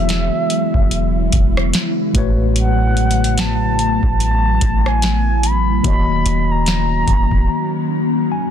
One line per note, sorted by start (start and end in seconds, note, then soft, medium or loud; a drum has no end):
0.00 0.31 E1 loud
0.00 5.80 C#3 medium
0.00 2.10 E3 medium
0.00 8.51 F#3 medium
0.00 2.10 G#3 medium
0.00 2.11 B3 medium
0.00 5.80 B3 medium
0.00 5.80 E4 medium
0.00 2.11 F#4 medium
0.00 2.12 G#4 medium
0.00 2.12 C#5 medium
0.00 2.16 E5 medium
0.09 snare loud
0.09 closed hi-hat medium
0.50 closed hi-hat medium
0.74 1.30 E1 medium
0.74 kick medium
0.91 closed hi-hat medium
1.32 1.72 E1 loud
1.32 kick medium
1.32 closed hi-hat medium
1.57 cross-stick loud
1.74 snare loud
1.74 closed hi-hat medium
2.13 3.99 A1 loud
2.13 5.39 A2 medium
2.13 5.39 A3 medium
2.13 5.81 A3 medium
2.13 5.40 F#4 medium
2.13 5.40 B4 medium
2.13 kick loud
2.13 closed hi-hat medium
2.18 5.41 C#5 medium
2.56 3.42 F#5 loud
2.56 closed hi-hat medium
2.97 closed hi-hat soft
3.11 closed hi-hat medium
3.24 closed hi-hat medium
3.38 4.21 A5 loud
3.38 snare loud
3.38 closed hi-hat medium
3.79 closed hi-hat medium
4.03 4.59 A1 medium
4.03 kick medium
4.20 4.89 A5 loud
4.20 closed hi-hat medium
4.61 5.81 A1 loud
4.61 kick medium
4.61 closed hi-hat medium
4.86 5.47 G#5 loud
4.86 cross-stick loud
5.02 snare loud
5.02 closed hi-hat medium
5.43 5.85 B5 loud
5.43 closed hi-hat medium
5.83 6.24 D#1 loud
5.83 8.51 D#3 medium
5.83 8.51 A#3 medium
5.83 8.51 C#4 medium
5.83 8.51 F#4 medium
5.83 8.28 C#5 medium
5.83 6.53 B5 loud
5.83 kick loud
5.83 closed hi-hat medium
5.88 8.29 D#5 medium
6.25 7.04 D#1 loud
6.25 closed hi-hat medium
6.51 8.15 A#5 loud
6.66 snare loud
6.66 closed hi-hat medium
7.07 7.30 D#1 loud
7.07 kick medium
7.07 closed hi-hat medium
7.31 7.48 D#1 loud
7.31 kick medium
8.32 8.51 G#5 medium